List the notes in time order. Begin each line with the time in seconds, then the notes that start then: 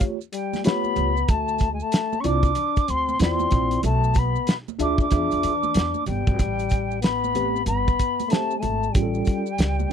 Already playing: A3 F4 G4 C#5
0.01 kick, low conga, maracas
0.21 maracas
0.33 G3 G5, closed hi-hat, maracas
0.53 snare, high conga, maracas
0.64 A3 B3 F4 G4 C#5 B5, snare, closed hi-hat, maracas
0.84 high conga, maracas
0.96 C#2, closed hi-hat, high conga, low conga, maracas
1.17 maracas
1.28 D2 A3 A5, kick, closed hi-hat, maracas
1.48 maracas
1.58 kick, closed hi-hat, high conga, maracas
1.72 G#3 G#5
1.80 A3 A5, maracas
1.92 snare, closed hi-hat, maracas
2.13 high conga, maracas
2.20 C#4 C#6, closed hi-hat
2.24 C2 C4 D4 E4 F4 D5 D6, low conga, maracas
2.43 kick, closed hi-hat, maracas
2.55 closed hi-hat, low conga, maracas
2.76 kick, closed hi-hat, maracas
2.88 D2 C4 C6, closed hi-hat, maracas
3.09 high conga, maracas
3.19 E2 C4 E4 F4 D5 C6, snare, closed hi-hat, maracas
3.40 high conga, maracas
3.51 A#1, kick, closed hi-hat, high conga, low conga, maracas
3.71 closed hi-hat, maracas
3.83 B1 A3 A5, closed hi-hat, maracas
4.04 maracas
4.14 B3, kick, closed hi-hat, high conga, maracas
4.18 B5
4.36 maracas
4.47 snare, closed hi-hat, maracas
4.68 high conga, maracas
4.79 D2 D4 F4 G#4 E5 D6, closed hi-hat, low conga, maracas
4.98 D4 D6, kick, maracas
5.11 E2 D4 F4 G#4 E5, kick, closed hi-hat, low conga, maracas
5.31 E2, closed hi-hat, maracas
5.43 E3, closed hi-hat, maracas
5.63 high conga, maracas
5.74 E2, snare, closed hi-hat, maracas
5.94 high conga, maracas
6.06 G1 G3 G5, closed hi-hat, high conga, low conga, maracas
6.27 G#1, kick, maracas
6.39 A1, kick, closed hi-hat, maracas
6.59 closed hi-hat, maracas
6.69 kick, closed hi-hat, maracas
6.91 maracas
7.02 B3 B5, snare, closed hi-hat, maracas
7.24 high conga, maracas
7.35 A3 C4 G4 B4, closed hi-hat, low conga, maracas
7.56 maracas
7.65 G1 B3 B5, closed hi-hat, low conga, maracas
7.88 kick, maracas
7.99 kick, closed hi-hat, maracas
8.20 closed hi-hat, high conga, maracas
8.26 A3 B3 B5
8.30 A3 C4 G4 C5 A5, snare, closed hi-hat, maracas
8.51 maracas
8.57 G#3 A3 G#5
8.61 G#1 A5, closed hi-hat, high conga, low conga, maracas
8.83 maracas
8.92 A1 G3 C#4 F4 G4 G5, kick, closed hi-hat, maracas
9.02 A4
9.14 maracas
9.25 kick, closed hi-hat, maracas
9.46 maracas
9.58 C#2, snare, closed hi-hat, maracas
9.80 high conga, maracas